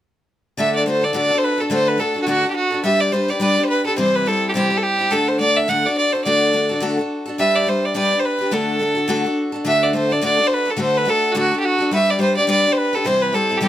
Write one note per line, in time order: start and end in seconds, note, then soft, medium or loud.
0.57 1.13 D3 medium
0.57 0.85 A3 medium
0.57 0.87 D4 medium
0.57 0.87 F#4 medium
0.57 0.87 A4 medium
0.57 0.73 E5 medium
0.75 0.86 D5 medium
0.86 1.02 A3 medium
0.86 1.03 D4 medium
0.86 1.02 F#4 medium
0.86 1.00 A4 medium
0.86 1.05 C5 medium
1.01 1.13 D4 soft
1.01 1.14 F#4 soft
1.01 1.14 A4 soft
1.01 1.15 D5 medium
1.13 1.30 D3 medium
1.13 1.31 A3 medium
1.13 1.31 D4 medium
1.13 1.31 F#4 medium
1.13 1.29 A4 medium
1.13 1.39 D5 medium
1.30 1.61 D4 soft
1.30 1.59 F#4 soft
1.30 1.57 A4 soft
1.38 1.45 C5 medium
1.44 1.62 B4 medium
1.58 1.70 D4 soft
1.58 1.71 F#4 soft
1.58 1.70 A4 soft
1.58 1.72 A4 medium
1.70 1.99 D3 medium
1.70 1.97 A3 medium
1.70 1.98 D4 medium
1.70 1.99 F#4 medium
1.70 2.00 A4 medium
1.70 1.89 C5 medium
1.88 2.01 B4 medium
1.98 2.15 A3 medium
1.98 2.16 D4 medium
1.98 2.15 F#4 medium
1.98 2.22 A4 medium
1.98 2.13 A4 medium
2.14 2.27 D4 soft
2.14 2.27 F#4 soft
2.14 2.27 A4 soft
2.22 2.27 F#4 medium
2.26 2.43 D3 medium
2.26 2.44 A3 medium
2.26 2.44 D4 medium
2.26 2.44 F#4 medium
2.26 2.49 F#4 medium
2.26 2.42 A4 medium
2.43 2.73 D4 soft
2.43 2.71 F#4 soft
2.43 2.69 A4 soft
2.50 2.55 G4 medium
2.56 2.82 F#4 medium
2.71 2.83 D4 soft
2.71 2.84 F#4 soft
2.71 2.83 A4 soft
2.84 3.11 G3 medium
2.84 3.12 D4 medium
2.84 3.13 G4 medium
2.84 3.13 B4 medium
2.84 3.02 E5 loud
3.01 3.14 D5 medium
3.12 3.29 G3 medium
3.12 3.29 D4 medium
3.12 3.29 G4 medium
3.12 3.27 B4 medium
3.12 3.31 C5 medium
3.28 3.39 D4 soft
3.28 3.40 G4 soft
3.28 3.41 B4 soft
3.28 3.41 D5 medium
3.40 3.57 G3 medium
3.40 3.57 D4 medium
3.40 3.57 G4 medium
3.40 3.55 B4 medium
3.40 3.65 D5 medium
3.56 3.87 D4 soft
3.56 3.86 G4 soft
3.56 3.84 B4 soft
3.63 3.69 C5 medium
3.69 3.85 B4 medium
3.85 3.97 D4 soft
3.85 3.98 G4 soft
3.85 3.97 A4 medium
3.85 3.97 B4 soft
3.96 4.25 C3 medium
3.96 4.26 E3 medium
3.96 4.25 G3 medium
3.96 4.26 C4 medium
3.96 4.27 E4 medium
3.96 4.17 C5 medium
3.96 4.27 C5 medium
4.15 4.29 B4 medium
4.26 4.54 G3 soft
4.26 4.54 C4 medium
4.26 4.56 E4 medium
4.26 4.48 A4 medium
4.26 4.55 C5 medium
4.49 4.53 G4 medium
4.54 4.71 C3 medium
4.54 4.71 E3 medium
4.54 4.71 G3 medium
4.54 4.71 C4 medium
4.54 4.71 E4 medium
4.54 4.79 G4 medium
4.54 4.69 C5 medium
4.70 5.01 G3 soft
4.70 5.00 C4 soft
4.70 4.99 E4 soft
4.70 4.97 C5 soft
4.77 4.85 A4 medium
4.83 5.13 G4 medium
4.99 5.11 G3 soft
4.99 5.12 C4 soft
4.99 5.12 E4 soft
4.99 5.11 C5 soft
5.11 5.67 D3 medium
5.11 5.38 A3 medium
5.11 5.40 D4 medium
5.11 5.40 F#4 medium
5.11 5.30 A4 medium
5.11 5.41 A4 medium
5.28 5.39 C5 medium
5.39 5.67 A3 medium
5.39 5.69 D4 medium
5.39 5.69 F#4 medium
5.39 5.69 A4 soft
5.39 5.58 D5 loud
5.56 5.70 E5 medium
5.68 5.84 D3 medium
5.68 5.85 A3 medium
5.68 5.85 D4 medium
5.68 5.85 F#4 medium
5.68 5.84 A4 medium
5.68 5.87 F#5 medium
5.85 6.16 D4 soft
5.85 6.14 F#4 soft
5.85 6.12 A4 soft
5.85 5.97 D5 medium
5.98 6.14 D5 medium
6.12 6.26 D4 soft
6.12 6.26 F#4 soft
6.12 6.25 A4 soft
6.12 6.24 C5 medium
6.24 6.80 D3 medium
6.24 6.52 A3 medium
6.24 6.54 D4 medium
6.24 6.54 F#4 medium
6.24 6.55 A4 medium
6.24 6.77 D5 medium
6.53 6.70 A3 medium
6.53 6.70 D4 medium
6.53 6.70 F#4 medium
6.53 6.68 A4 medium
6.69 6.81 D4 soft
6.69 6.81 F#4 soft
6.69 6.81 A4 medium
6.80 6.97 D3 medium
6.80 6.98 A3 medium
6.80 6.98 D4 medium
6.80 6.98 F#4 medium
6.80 6.96 A4 medium
6.97 7.29 D4 soft
6.97 7.26 F#4 soft
6.97 7.24 A4 soft
7.26 7.38 D4 soft
7.26 7.39 F#4 soft
7.26 7.38 A4 medium
7.38 7.65 G3 medium
7.38 7.67 D4 medium
7.38 7.67 G4 medium
7.38 7.68 B4 medium
7.38 7.57 E5 loud
7.55 7.70 D5 medium
7.67 7.93 G3 medium
7.67 7.95 D4 soft
7.67 7.95 G4 medium
7.67 7.96 B4 medium
7.67 7.86 C5 medium
7.85 7.96 D5 medium
7.94 8.11 G3 medium
7.94 8.11 D4 medium
7.94 8.12 G4 medium
7.94 8.10 B4 medium
7.94 8.21 D5 loud
8.11 8.42 D4 soft
8.11 8.40 G4 soft
8.11 8.37 B4 soft
8.19 8.26 C5 medium
8.25 8.54 B4 medium
8.38 8.52 G4 soft
8.38 8.51 B4 soft
8.43 8.51 D4 soft
8.51 9.07 D3 medium
8.51 8.79 A3 medium
8.51 8.80 D4 medium
8.51 8.81 F#4 medium
8.51 9.37 A4 medium
8.51 8.82 A4 medium
8.79 8.96 A3 soft
8.79 8.97 D4 soft
8.79 8.95 F#4 medium
8.79 8.94 A4 medium
8.95 9.08 D4 soft
8.95 9.09 F#4 soft
8.95 9.08 A4 soft
9.08 9.25 D3 medium
9.08 9.25 A3 medium
9.08 9.25 D4 medium
9.08 9.25 F#4 medium
9.08 9.23 A4 medium
9.24 9.55 D4 soft
9.24 9.54 F#4 medium
9.24 9.52 A4 soft
9.52 9.64 D4 soft
9.52 9.65 F#4 soft
9.52 9.65 A4 medium
9.65 10.21 D3 medium
9.65 9.92 A3 medium
9.65 9.94 D4 medium
9.65 9.94 F#4 medium
9.65 9.94 A4 medium
9.65 9.85 E5 medium
9.83 9.94 D5 medium
9.93 10.10 A3 medium
9.93 10.10 D4 medium
9.93 10.10 F#4 medium
9.93 10.08 A4 medium
9.93 10.13 C5 medium
10.09 10.21 D4 soft
10.09 10.22 F#4 soft
10.09 10.22 A4 soft
10.09 10.23 D5 medium
10.21 10.38 D3 medium
10.21 10.39 A3 medium
10.21 10.39 D4 medium
10.21 10.38 F#4 medium
10.21 10.35 A4 medium
10.21 10.48 D5 medium
10.37 10.69 D4 soft
10.37 10.67 F#4 soft
10.37 10.64 A4 soft
10.47 10.55 C5 medium
10.53 10.72 B4 medium
10.66 10.77 D4 soft
10.66 10.77 F#4 soft
10.66 10.78 A4 soft
10.70 10.80 A4 medium
10.77 11.06 D3 medium
10.77 11.04 A3 medium
10.77 11.05 D4 medium
10.77 11.06 F#4 medium
10.77 11.07 A4 medium
10.81 10.99 C5 medium
10.97 11.11 B4 medium
11.05 11.34 A3 medium
11.05 11.35 D4 medium
11.05 11.36 F#4 medium
11.05 11.36 A4 medium
11.09 11.33 A4 medium
11.32 11.51 D3 medium
11.32 11.52 A3 medium
11.32 11.37 F#4 medium
11.36 11.52 D4 medium
11.36 11.52 F#4 medium
11.36 11.57 F#4 medium
11.36 11.50 A4 medium
11.51 11.81 D4 soft
11.51 11.79 F#4 soft
11.51 11.77 A4 soft
11.60 11.67 G4 medium
11.65 11.93 F#4 medium
11.78 11.91 D4 soft
11.78 11.92 F#4 soft
11.78 11.91 A4 medium
11.91 12.18 G3 medium
11.91 12.19 D4 medium
11.91 12.20 G4 medium
11.91 12.21 B4 medium
11.91 12.11 E5 medium
12.10 12.21 D5 medium
12.19 12.36 G3 medium
12.19 12.36 D4 medium
12.19 12.36 G4 medium
12.19 12.34 B4 medium
12.19 12.36 C5 medium
12.35 12.47 D4 soft
12.35 12.48 G4 soft
12.35 12.48 B4 soft
12.35 12.48 D5 medium
12.47 12.64 G3 medium
12.47 12.65 D4 medium
12.47 12.65 G4 medium
12.47 12.63 B4 medium
12.47 12.73 D5 loud
12.64 12.94 D4 soft
12.64 12.94 G4 soft
12.64 12.92 B4 soft
12.72 12.79 C5 medium
12.77 12.96 B4 medium
12.93 13.06 D4 soft
12.93 13.06 G4 soft
12.93 13.07 A4 medium
12.93 13.05 B4 soft
13.05 13.33 C3 medium
13.05 13.34 E3 medium
13.05 13.31 G3 medium
13.05 13.33 C4 medium
13.05 13.34 E4 medium
13.05 13.23 C5 medium
13.05 13.35 C5 medium
13.22 13.36 B4 medium
13.33 13.49 G3 medium
13.33 13.50 C4 medium
13.33 13.49 E4 medium
13.33 13.59 A4 medium
13.33 13.48 C5 medium
13.49 13.61 G3 soft
13.49 13.61 C4 soft
13.49 13.61 E4 soft
13.49 13.61 C5 soft
13.57 13.68 C3 medium
13.57 13.61 G4 medium
13.61 13.68 E3 medium
13.61 13.68 G3 medium
13.61 13.68 C4 medium
13.61 13.68 E4 medium
13.61 13.68 G4 medium
13.61 13.68 C5 medium